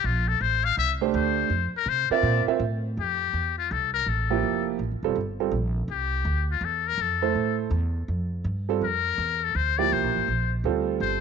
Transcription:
0.04 0.40 A#1 medium
0.04 0.29 F4 medium
0.28 0.43 A4 loud
0.41 0.76 A1 loud
0.41 0.66 C5 loud
0.64 0.77 F5 loud
0.77 1.13 C2 loud
0.77 0.92 E5 loud
1.01 1.48 A3 medium
1.01 1.48 D4 medium
1.01 1.48 G4 medium
1.01 1.48 C5 medium
1.14 1.49 D2 loud
1.14 1.70 C5 medium
1.50 1.72 F2 medium
1.74 1.90 A#4 loud
1.74 muted upright bass stroke soft
1.86 2.08 C3 loud
1.86 2.10 C5 loud
2.10 2.45 C4 medium
2.10 2.45 F4 medium
2.10 2.45 A#4 medium
2.10 2.45 D5 medium
2.10 2.45 E5 medium
2.10 muted upright bass stroke soft
2.23 2.45 A#2 loud
2.47 2.59 C4 medium
2.47 2.59 F4 medium
2.47 2.59 A#4 medium
2.47 2.59 E5 medium
2.47 muted upright bass stroke soft
2.60 2.95 A2 loud
2.97 3.32 F2 medium
2.97 3.54 G4 medium
3.33 3.69 E2 medium
3.58 3.73 F4 medium
3.71 4.06 C2 medium
3.71 3.93 A4 medium
3.94 4.10 A#4 loud
4.06 4.42 A1 medium
4.06 4.67 A4 medium
4.30 4.77 F3 medium
4.30 4.77 A#3 medium
4.30 4.77 E4 medium
4.30 4.77 G4 medium
4.43 4.78 F1 medium
4.79 4.93 A1 medium
4.92 5.02 F1 medium
5.03 5.15 E1 medium
5.03 5.15 G3 medium
5.03 5.15 C4 medium
5.03 5.16 F4 medium
5.03 5.15 A4 medium
5.16 5.51 G1 medium
5.40 5.52 G3 medium
5.40 5.52 C4 medium
5.40 5.52 F4 medium
5.40 5.52 A4 medium
5.52 5.87 A#1 loud
5.88 6.24 C2 medium
5.88 6.46 G4 medium
6.25 6.60 D2 medium
6.51 6.66 F4 medium
6.61 6.97 E2 medium
6.61 6.89 A4 medium
6.87 7.03 A#4 loud
6.98 7.34 F2 medium
6.98 7.60 A4 medium
7.22 7.69 A3 medium
7.22 7.69 E4 medium
7.22 7.70 A4 medium
7.22 7.70 C5 medium
7.35 7.70 A2 medium
7.71 8.07 E2 loud
8.08 8.44 F2 medium
8.44 8.80 G2 medium
8.69 8.81 G3 medium
8.69 8.81 C4 medium
8.69 8.81 F4 medium
8.69 8.81 A4 medium
8.81 9.17 F2 medium
8.81 9.46 A#4 loud
9.18 9.54 E2 medium
9.44 9.57 A4 medium
9.55 9.91 D2 medium
9.55 9.79 C5 medium
9.78 10.26 F3 medium
9.78 10.26 A#3 medium
9.78 10.26 E4 medium
9.78 10.26 G4 medium
9.78 9.94 D5 loud
9.92 10.04 C2 medium
9.92 10.52 C5 medium
10.04 10.15 A#1 medium
10.16 10.27 A1 medium
10.28 10.63 A#1 medium
10.64 11.00 D2 medium
10.64 11.20 G3 medium
10.64 11.21 C4 medium
10.64 11.21 F4 medium
10.64 11.21 A4 medium
11.00 11.21 G1 medium
11.00 11.21 C5 medium

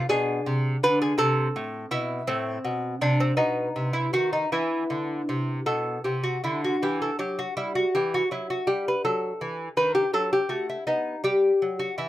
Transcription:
0.09 0.39 B2 medium
0.09 1.15 D4 medium
0.09 0.80 G#4 loud
0.46 0.76 C3 medium
0.83 1.12 D3 medium
0.83 1.01 B4 loud
1.02 1.18 G#4 loud
1.18 1.47 C3 medium
1.18 2.24 C4 medium
1.18 1.88 A4 loud
1.56 1.85 A2 medium
1.91 2.21 B2 medium
1.91 2.27 E4 loud
2.27 2.58 A2 medium
2.27 2.98 C4 loud
2.65 2.94 B2 medium
3.01 3.31 C3 medium
3.01 3.20 D4 loud
3.20 3.36 C4 loud
3.37 3.68 B2 medium
3.37 4.47 B3 medium
3.37 3.91 D#4 loud
3.76 4.06 C3 medium
3.93 4.13 E4 loud
4.13 4.44 D#3 medium
4.13 4.32 F#4 loud
4.33 4.52 D#4 medium
4.52 4.83 E3 medium
4.52 6.79 B3 medium
4.52 6.23 E4 medium
4.90 5.21 D3 medium
5.29 5.59 C3 medium
5.66 5.97 B2 medium
5.66 6.03 A4 loud
6.04 6.37 C3 medium
6.04 6.24 G4 medium
6.23 6.44 F#4 medium
6.44 6.75 D3 medium
6.44 6.64 E4 medium
6.64 6.83 F#4 medium
6.82 7.10 E3 medium
6.82 7.01 G4 medium
7.02 7.19 A4 medium
7.19 7.46 F#3 medium
7.19 7.38 G4 loud
7.39 7.56 F#4 medium
7.57 7.84 G3 medium
7.57 7.75 E4 medium
7.75 7.95 F#4 medium
7.95 8.22 E3 medium
7.95 8.14 G4 loud
8.14 8.31 F#4 medium
8.31 8.58 F#3 medium
8.31 8.50 E4 medium
8.50 8.69 F#4 medium
8.67 8.94 G3 medium
8.67 8.86 G4 medium
8.88 9.04 B4 medium
9.05 9.31 F#3 medium
9.05 9.75 A4 loud
9.41 9.68 E3 medium
9.77 10.04 D#3 medium
9.77 9.94 B4 loud
9.95 10.13 G4 loud
10.13 10.40 F#3 medium
10.13 10.32 A4 loud
10.33 10.51 G4 medium
10.49 10.77 A3 medium
10.49 10.69 F#4 medium
10.69 10.86 E4 medium
10.87 11.15 B3 medium
10.87 11.23 D#4 medium
11.24 11.51 G3 medium
11.24 11.78 G4 loud
11.62 11.88 F#3 medium
11.79 11.98 F#4 medium
11.98 12.09 E3 medium
11.98 12.09 E4 medium

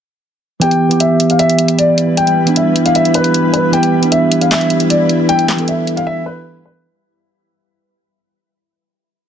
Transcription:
0.60 0.83 E3 medium
0.60 6.81 G3 medium
0.60 0.84 B3 medium
0.60 3.70 E4 medium
0.60 0.85 G4 loud
0.60 6.81 B4 medium
0.60 0.98 G5 medium
0.60 closed hi-hat medium
0.71 closed hi-hat soft
0.89 1.50 E3 medium
0.89 1.51 B3 medium
0.89 1.51 G4 medium
0.89 closed hi-hat medium
1.00 1.28 E5 medium
1.00 closed hi-hat medium
1.20 closed hi-hat medium
1.30 1.38 F5 medium
1.30 closed hi-hat soft
1.39 1.76 E5 medium
1.39 closed hi-hat medium
1.49 closed hi-hat medium
1.59 closed hi-hat medium
1.68 closed hi-hat medium
1.78 2.15 D5 medium
1.78 closed hi-hat medium
1.98 closed hi-hat medium
2.17 2.54 G5 medium
2.17 closed hi-hat medium
2.27 closed hi-hat soft
2.45 3.06 E3 medium
2.45 3.07 B3 medium
2.45 3.08 D4 medium
2.45 closed hi-hat medium
2.56 2.84 E5 medium
2.56 closed hi-hat medium
2.76 closed hi-hat medium
2.86 2.94 F5 medium
2.86 closed hi-hat medium
2.95 3.12 E5 loud
2.95 closed hi-hat medium
3.05 closed hi-hat medium
3.14 3.51 B4 medium
3.14 closed hi-hat medium
3.24 closed hi-hat medium
3.34 closed hi-hat medium
3.53 3.70 B4 medium
3.53 closed hi-hat medium
3.71 3.95 E3 loud
3.71 3.96 B3 medium
3.71 6.82 E4 medium
3.71 3.97 G4 loud
3.71 4.10 G5 medium
3.71 closed hi-hat medium
3.83 closed hi-hat soft
4.01 4.62 E3 medium
4.01 4.63 B3 medium
4.01 4.63 D4 medium
4.01 closed hi-hat medium
4.12 4.39 E5 medium
4.12 closed hi-hat medium
4.32 closed hi-hat medium
4.41 4.49 F5 medium
4.41 closed hi-hat soft
4.51 4.88 E5 medium
4.51 snare loud
4.51 clap medium
4.51 closed hi-hat medium
4.61 closed hi-hat medium
4.70 closed hi-hat medium
4.80 closed hi-hat medium
4.90 5.27 D5 medium
4.90 closed hi-hat medium
5.09 closed hi-hat medium
5.29 5.66 G5 medium
5.29 closed hi-hat medium
5.39 closed hi-hat soft
5.48 snare medium
5.48 clap medium
5.57 6.17 E3 medium
5.57 6.18 B3 medium
5.57 6.19 A4 medium
5.57 closed hi-hat medium
5.68 5.96 E5 medium
5.68 closed hi-hat medium
5.87 closed hi-hat medium
5.97 6.05 F5 medium
5.97 closed hi-hat soft
6.07 6.23 E5 loud
6.26 6.63 B4 medium
6.66 6.82 B4 medium

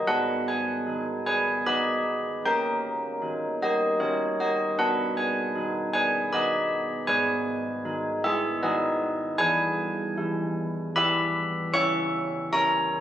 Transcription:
0.07 2.40 G#3 medium
0.07 0.45 B4 medium
0.07 0.46 F#5 medium
0.48 1.23 B4 medium
0.48 1.23 G#5 medium
0.87 1.65 D#4 soft
1.26 1.64 B4 medium
1.26 1.64 G#5 medium
1.66 2.41 D#4 soft
1.66 2.41 B4 soft
1.66 2.41 D#5 medium
1.66 2.42 B5 medium
2.46 4.74 A#3 medium
2.46 3.58 A#4 medium
2.46 3.57 G5 medium
3.22 3.99 D#4 soft
3.62 3.98 G4 medium
3.62 3.99 D#5 medium
4.00 4.73 D#4 soft
4.00 4.37 G4 medium
4.00 4.37 C#5 medium
4.40 4.76 G4 medium
4.40 4.77 D#5 medium
4.78 7.06 B3 medium
4.78 5.15 B4 medium
4.78 5.15 F#5 medium
5.17 5.90 B4 medium
5.17 5.91 G#5 medium
5.55 6.32 D#4 soft
5.93 6.30 B4 medium
5.93 6.30 G#5 medium
6.33 7.06 D#4 soft
6.33 7.06 B4 medium
6.33 7.06 D#5 medium
6.33 7.06 B5 loud
7.07 9.36 G#3 medium
7.07 8.21 B4 medium
7.07 8.20 G#5 loud
7.85 8.62 D#4 medium
8.24 8.61 G#4 medium
8.24 8.61 E5 loud
8.63 9.37 D#4 medium
8.63 8.99 G#4 medium
8.63 9.36 B4 medium
8.63 9.00 D#5 medium
9.38 11.70 E3 medium
9.38 10.92 B4 medium
9.38 10.91 G#5 loud
10.18 10.95 E4 medium
10.96 11.70 E4 medium
10.96 11.71 B4 medium
10.96 11.71 E5 medium
10.96 11.71 B5 loud
11.74 13.00 C#4 medium
11.74 12.49 E5 medium
11.74 12.49 C#6 loud
12.52 13.00 E4 medium
12.52 13.00 C#5 medium
12.52 13.00 A#5 loud

